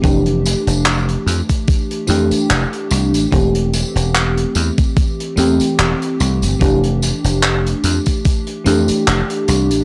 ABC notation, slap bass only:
X:1
M:4/4
L:1/16
Q:"Swing 16ths" 1/4=73
K:F
V:1 name="Slap bass" clef=bass
F,,,2 z F,,,2 z F,, z3 F,, z F,,, z C,, A,,, | E,,,2 z E,,,2 z E,, z3 E,, z E,,, z C,, G,,, | F,,,2 z F,,,2 z F,, z3 F,, z F,,, z C,, A,,, |]